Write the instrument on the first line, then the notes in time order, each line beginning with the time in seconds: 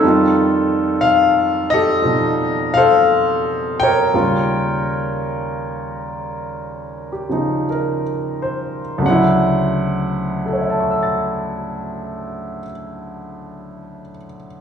upright piano
Already playing: C4 D#4 A4
0.02 F2 D#3 G3
0.07 F4
1.01 F5
1.70 G4 A4 D#5
2.02 B2 F3 D#4
2.74 A4 C5 F5
3.80 A#4 C#5 G5
4.14 D#2 C#3 G3 F4
7.12 G4
7.29 C#3 F3 D#4
7.70 A#4
8.42 C5
8.98 D2
9.03 C#3 F#3 F#5
9.10 E4
10.46 A4
10.53 C#5
10.61 E5
10.70 A5
10.80 C#6
10.91 E6
11.03 A6